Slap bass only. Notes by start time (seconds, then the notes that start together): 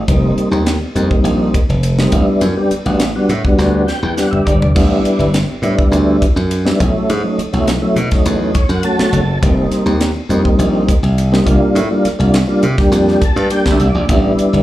0.08 F1
0.37 muted slap bass stroke
0.51 D#2
0.95 F2
1.10 muted slap bass stroke
1.24 A#1
1.69 F1
2.12 A1
2.41 F#2
2.71 muted slap bass stroke
2.86 A1
3.29 A2
3.58 D2
4.03 E2
4.32 muted slap bass stroke
4.46 G1
4.76 A1
5.04 muted slap bass stroke
5.19 G1
5.62 A2
5.92 D2
6.36 F#2
6.80 B1
7.10 G#2
7.38 muted slap bass stroke
7.53 B1
7.96 B2
8.26 E2
8.69 F#2
8.99 muted slap bass stroke
9.12 F#1
9.42 F1
9.71 muted slap bass stroke
9.86 D#2
10.29 F2
10.45 muted slap bass stroke
10.59 A#1
11.03 C2
11.46 C2
11.75 A2
12.05 muted slap bass stroke
12.20 C2
12.63 C3
12.92 F2
13.36 G2
13.65 D2
13.79 C2
13.94 A#1
14.09 A1
14.38 muted slap bass stroke
14.53 G1